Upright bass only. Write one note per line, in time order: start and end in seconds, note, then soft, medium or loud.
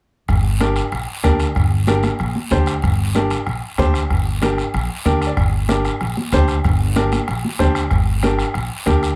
0.29 0.80 G1 medium
0.92 1.05 A#1 medium
1.25 1.50 D2 medium
1.56 2.07 G1 loud
2.20 2.33 A#1 medium
2.52 2.77 D2 medium
2.84 3.34 G1 loud
3.47 3.60 A#1 medium
3.78 4.04 D2 medium
4.10 4.61 G1 medium
4.74 4.87 A#1 medium
5.06 5.31 D2 medium
5.37 5.88 G1 medium
6.01 6.14 A#1 medium
6.33 6.58 D2 medium
6.65 7.16 G1 loud
7.29 7.41 A#1 medium
7.60 7.85 D2 medium
7.91 8.42 G1 medium
8.55 8.68 A#1 medium
8.87 9.12 D2 medium